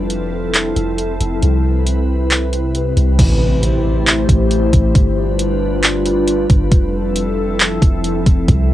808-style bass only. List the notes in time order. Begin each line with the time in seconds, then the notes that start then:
Already playing: F1
0.76 F1
1.20 F1
1.42 C2
2.97 C2
3.19 A1
4.29 A1
4.73 A1
4.95 G1
6.50 G1
6.72 F1
7.82 F1
8.26 F1
8.48 C2